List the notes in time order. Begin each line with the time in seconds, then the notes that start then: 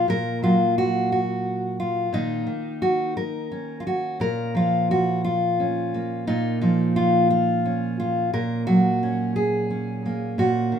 Already playing: A#3
0.08 A#2 A#4
0.42 F#3 F4
0.78 F#4
1.12 F#4
1.80 F4
2.13 A#2 D#3 A#3 D#4
2.47 D#3
2.82 F#4
3.17 A#4
3.52 C#4
3.80 F4
3.87 F#4
4.20 A#2 A#4
4.55 F3 F4
4.91 F#4
5.24 F4
5.60 C#4
5.94 A#3
6.27 A#2 D#4
6.61 F3 D#4
6.96 F4
7.30 F4
7.65 C#4
8.00 F4
8.33 A#2 A#4
8.67 F#3 F#4
9.03 C#4
9.36 G#4
9.70 C#4
10.06 A#3
10.38 A#2 F#4
10.72 D#3